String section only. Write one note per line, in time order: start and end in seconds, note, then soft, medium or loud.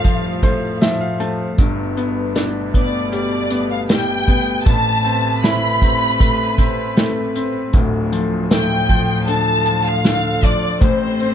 0.00 1.55 A2 medium
0.00 1.54 F3 medium
0.00 1.55 G3 medium
1.58 4.63 B2 medium
1.58 4.63 G3 medium
1.58 7.70 A3 medium
4.67 7.71 C3 medium
4.67 7.71 B4 medium
7.73 10.78 D2 medium
7.73 10.78 A2 medium
7.73 10.78 F3 medium
10.81 11.34 C3 medium
10.81 11.34 A3 medium
10.81 11.34 C4 medium